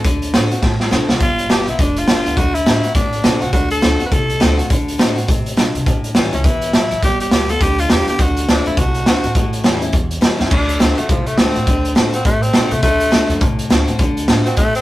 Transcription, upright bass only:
0.05 0.31 D2 medium
0.35 0.61 A2 medium
0.63 0.89 A2 medium
0.92 1.08 B2 medium
1.10 1.20 C3 medium
1.21 1.47 G1 medium
1.50 1.66 G1 medium
1.67 1.78 B1 medium
1.79 2.05 F1 medium
2.08 2.24 G1 medium
2.26 2.36 D2 medium
2.37 2.64 D2 loud
2.67 2.93 A2 medium
2.95 3.22 A2 medium
3.25 3.41 B2 medium
3.42 3.52 C3 medium
3.53 3.80 D2 medium
3.83 3.99 D2 medium
4.01 4.11 F#2 medium
4.12 4.38 C2 medium
4.41 4.57 D2 medium
4.58 4.69 A2 medium
4.70 4.97 D2 medium
5.00 5.26 A2 medium
5.29 5.55 A2 medium
5.58 5.74 B2 medium
5.75 5.86 C3 medium
5.86 6.13 A1 medium
6.16 6.32 A1 medium
6.33 6.44 C#2 medium
6.44 6.71 G1 medium
6.73 6.90 A1 medium
6.91 7.02 A1 medium
7.02 7.29 G1 medium
7.31 7.58 D2 medium
7.61 7.87 D2 medium
7.90 8.06 E2 medium
8.07 8.18 E2 medium
8.19 8.46 D2 medium
8.48 8.64 D2 medium
8.66 8.77 F#2 medium
8.77 9.04 C2 medium
9.06 9.22 D2 medium
9.24 9.34 A2 medium
9.35 9.62 A1 loud
9.64 9.91 E2 medium
9.93 10.20 E2 medium
10.40 10.50 G2 medium
10.51 10.78 D2 medium
10.80 10.96 D2 medium
10.99 11.09 F#2 medium
11.10 11.36 C2 medium
11.39 11.54 D2 medium
11.56 11.66 A2 medium
11.67 11.94 D2 medium
11.97 12.23 A2 medium
12.25 12.52 A2 loud
12.54 12.70 B2 medium
12.72 12.82 C3 medium
12.83 13.10 D2 loud
13.11 13.28 D2 medium
13.29 13.40 F#2 medium
13.42 13.68 C2 loud
13.70 13.86 D2 medium
13.88 13.98 A2 medium
14.00 14.26 D2 loud
14.29 14.55 A2 medium
14.57 14.81 A2 medium

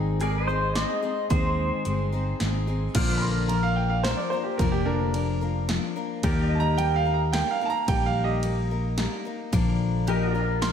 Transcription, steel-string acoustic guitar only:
0.00 0.20 G#2 medium
0.00 0.20 D#3 medium
0.00 0.18 G#3 medium
0.00 0.19 C4 medium
0.00 0.20 D#4 medium
0.00 0.20 G#4 loud
0.20 0.47 G#3 medium
0.20 0.48 C4 medium
0.20 0.48 D#4 medium
0.20 0.47 G#4 medium
0.48 0.74 G#3 soft
0.48 0.75 C4 soft
0.48 0.75 D#4 soft
0.48 0.75 G#4 soft
0.75 1.03 G#3 soft
0.75 1.02 C4 soft
0.75 1.02 D#4 medium
0.75 1.01 G#4 medium
1.02 1.29 G#3 soft
1.02 1.29 C4 soft
1.02 1.30 D#4 soft
1.02 1.30 G#4 soft
1.30 1.85 G#2 medium
1.30 1.85 D#3 medium
1.30 1.84 G#3 medium
1.30 1.84 C4 medium
1.30 1.85 D#4 medium
1.30 1.86 G#4 medium
1.85 2.12 G#3 medium
1.85 2.12 C4 medium
1.85 2.12 D#4 medium
1.85 2.11 G#4 medium
2.12 2.40 G#3 soft
2.12 2.40 C4 soft
2.12 2.40 D#4 soft
2.12 2.40 G#4 medium
2.41 2.68 G#3 medium
2.41 2.67 C4 medium
2.41 2.67 D#4 medium
2.41 2.66 G#4 medium
2.67 2.95 G#3 soft
2.67 2.95 C4 soft
2.67 2.95 D#4 soft
2.67 2.95 G#4 soft
2.95 3.50 A#2 medium
2.95 3.50 D3 medium
2.95 3.49 F3 medium
2.95 3.50 A#3 medium
2.95 3.50 D4 loud
2.95 3.51 A#4 loud
3.50 4.03 F3 medium
3.50 4.05 A#3 medium
3.50 4.05 D4 medium
3.50 4.06 A#4 medium
4.05 4.32 F3 medium
4.05 4.32 A#3 medium
4.05 4.32 D4 medium
4.05 4.31 A#4 medium
4.32 4.59 F3 soft
4.32 4.60 A#3 soft
4.32 4.60 D4 soft
4.32 4.60 A#4 soft
4.60 5.15 A#2 medium
4.60 5.15 D3 medium
4.60 5.13 F3 medium
4.60 5.14 A#3 medium
4.60 5.14 D4 medium
4.60 5.16 A#4 medium
5.14 5.42 F3 medium
5.14 5.42 A#3 medium
5.14 5.41 D4 medium
5.14 5.40 A#4 medium
5.41 5.68 F3 soft
5.41 5.69 A#3 soft
5.41 5.69 D4 soft
5.41 5.69 A#4 soft
5.69 5.96 F3 medium
5.69 5.96 A#3 medium
5.69 5.95 D4 medium
5.69 5.95 A#4 medium
5.96 6.23 F3 soft
5.96 6.22 A#3 soft
5.96 6.24 D4 medium
5.96 6.23 A#4 soft
6.23 6.78 D#3 medium
6.23 6.77 G3 medium
6.23 6.78 A#3 loud
6.23 6.78 D#4 medium
6.23 6.79 A#4 loud
6.78 7.06 G3 medium
6.78 7.06 A#3 medium
6.78 7.05 D#4 medium
6.78 7.04 A#4 medium
7.05 7.33 A#3 soft
7.05 7.33 D#4 soft
7.05 7.33 A#4 soft
7.33 7.61 G3 medium
7.33 7.61 A#3 medium
7.33 7.61 D#4 medium
7.33 7.60 A#4 medium
7.61 7.88 A#3 soft
7.61 7.88 D#4 soft
7.61 7.89 A#4 soft
7.88 8.43 D#3 medium
7.88 8.42 G3 medium
7.88 8.43 A#3 medium
7.88 8.43 D#4 medium
7.88 8.44 A#4 medium
8.43 8.71 G3 medium
8.43 8.71 A#3 medium
8.43 8.70 D#4 medium
8.43 8.70 A#4 medium
8.71 8.97 A#3 soft
8.71 8.98 D#4 soft
8.71 8.98 A#4 soft
8.98 9.25 G3 medium
8.98 9.26 A#3 medium
8.98 9.25 D#4 medium
8.98 9.24 A#4 medium
9.25 9.53 A#3 soft
9.25 9.53 D#4 medium
9.25 9.53 A#4 soft
9.52 10.08 A#2 medium
9.52 10.08 D3 medium
9.52 10.06 F3 medium
9.52 10.07 A#3 medium
9.52 10.07 D4 loud
9.52 10.08 A#4 loud
10.07 10.35 F3 medium
10.07 10.34 A#3 medium
10.07 10.34 D4 medium
10.07 10.33 A#4 medium
10.34 10.60 F3 soft
10.34 10.61 A#3 soft
10.34 10.62 D4 soft
10.34 10.62 A#4 soft
10.62 10.72 F3 medium
10.62 10.72 A#3 soft
10.62 10.72 D4 medium
10.62 10.72 A#4 medium

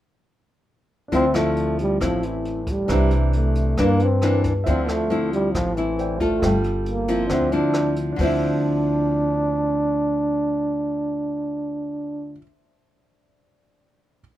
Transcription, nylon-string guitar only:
1.12 1.98 D3 soft
1.12 1.25 F3 medium
1.12 1.25 C4 soft
1.12 1.25 E4 soft
1.34 1.97 F3 medium
1.34 1.97 C4 medium
1.34 1.97 E4 medium
2.01 2.87 A2 soft
2.01 2.60 C4 medium
2.01 2.60 E4 medium
2.88 3.75 C3 soft
2.88 3.73 E3 medium
2.88 3.74 D4 medium
3.78 4.64 G2 medium
3.78 4.06 E3 medium
3.78 4.06 A#3 soft
3.78 4.07 D4 medium
4.22 4.52 E3 medium
4.22 4.52 A#3 medium
4.22 4.52 D4 medium
4.66 5.52 D3 soft
4.66 5.07 F3 medium
4.66 5.07 C4 medium
4.66 5.07 E4 medium
5.10 5.73 F3 soft
5.10 5.73 C4 medium
5.10 5.73 E4 medium
5.55 6.41 A2 medium
5.77 6.17 C4 soft
5.77 6.18 E4 medium
6.21 7.05 F4 medium
6.21 7.05 A4 medium
6.43 7.08 G3 soft
7.09 7.49 F3 medium
7.09 7.49 C4 medium
7.09 7.49 E4 medium
7.30 8.15 D3 medium
7.52 8.15 F3 medium
7.52 8.15 C4 medium
7.52 8.15 E4 medium
8.16 12.38 D3 medium
8.16 12.40 F3 medium
8.21 12.42 C4 medium
8.21 12.44 E4 medium

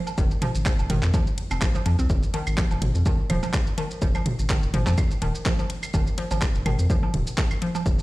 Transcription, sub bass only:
0.18 0.28 F1 loud
0.55 0.63 G#1 medium
0.79 0.87 F1 loud
0.90 1.00 G#1 medium
1.03 1.11 F2 medium
1.51 1.59 F1 medium
1.86 1.96 F2 loud
1.99 2.07 C2 medium
2.10 2.20 F1 loud
2.47 2.55 G#1 medium
2.71 2.79 F1 loud
2.82 2.92 G#1 medium
2.95 3.03 F2 medium
3.30 3.40 D#1 medium
4.02 4.12 F1 loud
4.39 4.47 G#1 medium
4.63 4.71 F1 loud
4.74 4.84 G#1 medium
4.87 4.95 F2 medium
5.22 5.32 D#1 medium
5.94 6.04 F1 loud
6.31 6.39 G#1 loud
6.55 6.63 F1 loud
6.66 6.76 G#1 medium
6.79 6.87 F2 medium
7.14 7.24 D#1 medium
7.86 7.96 F1 loud

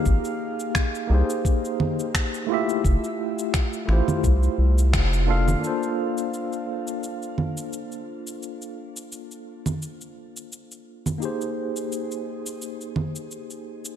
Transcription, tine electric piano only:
0.00 1.04 A#3 medium
0.00 1.06 D#4 medium
0.00 1.06 G4 medium
0.00 1.07 G#4 medium
0.00 1.08 F5 medium
1.07 2.44 A#3 medium
1.07 2.45 D#4 medium
1.07 2.46 G4 medium
1.13 2.47 G#4 medium
1.13 2.48 C5 medium
2.47 3.84 A3 medium
2.47 3.85 E4 medium
2.47 3.86 F4 medium
2.52 3.87 G4 medium
2.52 3.87 E5 medium
3.86 5.23 A3 medium
3.86 5.24 E4 medium
3.86 5.25 F4 medium
3.91 5.26 G4 medium
3.91 5.27 C5 medium
5.27 5.59 A#3 medium
5.27 5.60 D4 medium
5.27 5.62 F4 medium
5.27 5.64 A4 medium
5.27 5.99 F5 medium
5.60 11.16 A#3 medium
5.60 11.17 D4 medium
5.60 11.18 F4 medium
5.65 11.19 A4 medium
5.65 11.20 C5 medium
11.18 13.96 A#3 medium
11.18 13.96 D#4 medium
11.18 13.96 G4 medium
11.24 13.96 G#4 medium
11.24 13.96 C5 medium

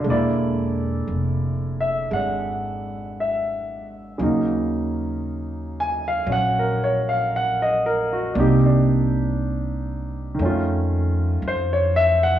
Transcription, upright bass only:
0.04 1.04 E1 medium
1.08 2.07 F1 medium
2.11 4.16 G#1 medium
4.19 6.23 D#2 medium
6.27 8.30 A#1 medium
8.35 10.35 C2 medium
10.39 11.37 F2 medium
11.42 12.39 F2 medium

